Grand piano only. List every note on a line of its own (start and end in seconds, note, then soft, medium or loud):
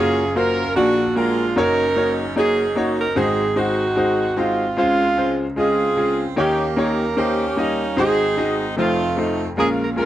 0.00 0.72 F#1 medium
0.00 0.72 F#2 medium
0.00 0.21 A#3 medium
0.00 0.21 F4 medium
0.00 0.22 F#4 medium
0.00 0.22 C#5 medium
0.35 0.62 A#3 medium
0.35 0.62 F4 medium
0.35 0.62 F#4 medium
0.35 0.63 C5 medium
0.75 1.52 A#1 medium
0.75 1.52 A#2 medium
0.75 1.02 A#3 medium
0.75 1.02 F#4 medium
0.75 1.02 G#4 medium
0.75 1.03 D5 medium
1.16 1.42 A#3 medium
1.16 1.42 F#4 medium
1.16 1.43 G#4 medium
1.16 1.43 A#4 medium
1.56 3.13 F#1 medium
1.56 3.13 F#2 medium
1.56 1.82 A#3 medium
1.56 1.83 D#4 medium
1.56 1.83 F#4 medium
1.56 1.83 C#5 medium
1.96 2.22 A#3 medium
1.96 2.23 D#4 medium
1.96 2.23 F#4 medium
1.96 2.23 C#5 medium
2.36 2.62 A#3 medium
2.36 2.63 D#4 medium
2.36 2.63 F#4 medium
2.36 2.63 C#5 medium
2.75 3.02 A#3 medium
2.75 3.03 D#4 medium
2.75 3.03 F#4 medium
2.75 3.03 C#5 medium
3.15 4.73 G#1 medium
3.15 4.73 G#2 medium
3.15 3.42 G#3 medium
3.15 3.43 D#4 medium
3.15 3.43 F#4 medium
3.15 3.43 C5 medium
3.56 3.82 G#3 medium
3.56 3.83 D#4 medium
3.56 3.83 F#4 medium
3.56 3.83 C5 medium
3.96 4.23 G#3 medium
3.96 4.23 D#4 medium
3.96 4.23 F#4 medium
3.96 4.23 C5 medium
4.36 4.63 G#3 medium
4.36 4.63 D#4 medium
4.36 4.63 F#4 medium
4.36 4.64 C5 medium
4.77 6.33 C#2 soft
4.77 6.33 C#3 medium
4.77 5.03 G#3 medium
4.77 5.03 C#4 medium
4.77 5.04 F4 medium
4.77 5.04 C5 medium
5.17 5.43 G#3 medium
5.17 5.43 C#4 medium
5.17 5.44 F4 medium
5.17 5.44 C5 medium
5.56 5.83 G#3 medium
5.56 5.83 C#4 medium
5.56 5.83 F4 medium
5.56 5.84 D#5 medium
5.96 6.23 G#3 medium
5.96 6.23 C#4 medium
5.96 6.23 F4 medium
5.96 6.24 G#4 medium
6.36 7.93 D#2 medium
6.36 7.93 D#3 medium
6.36 6.63 A#3 medium
6.36 6.63 D#4 medium
6.36 6.63 G4 medium
6.36 6.64 C#5 medium
6.76 7.03 A#3 medium
6.76 7.03 D#4 medium
6.76 7.04 G4 medium
6.76 7.04 C#5 medium
7.16 7.43 A#3 medium
7.16 7.43 D#4 medium
7.16 7.43 G4 medium
7.16 7.44 C5 medium
7.56 7.83 A#3 medium
7.56 7.83 D#4 medium
7.56 7.84 G4 medium
7.56 7.84 D#5 medium
7.97 8.73 G#1 medium
7.97 8.73 G#2 medium
7.97 8.23 G#3 medium
7.97 8.23 D#4 medium
7.97 8.24 F#4 medium
7.97 8.24 C5 medium
8.37 8.63 G#3 medium
8.37 8.63 D#4 medium
8.37 8.64 F#4 medium
8.37 8.64 D#5 medium
8.77 9.53 F1 medium
8.77 9.53 F2 medium
8.77 9.03 A3 medium
8.77 9.03 D#4 medium
8.77 9.04 F4 medium
8.77 9.04 C5 medium
9.17 9.43 A3 medium
9.17 9.43 D#4 medium
9.17 9.44 F4 medium
9.17 9.44 C5 medium
9.57 10.05 A#1 medium
9.57 10.05 A#2 medium
9.57 9.83 G#3 medium
9.57 9.83 C#4 medium
9.57 9.84 F4 medium
9.57 9.84 A#4 medium
9.96 10.05 G#3 medium
9.96 10.05 C#4 medium
9.96 10.05 F4 medium
9.96 10.05 A#4 medium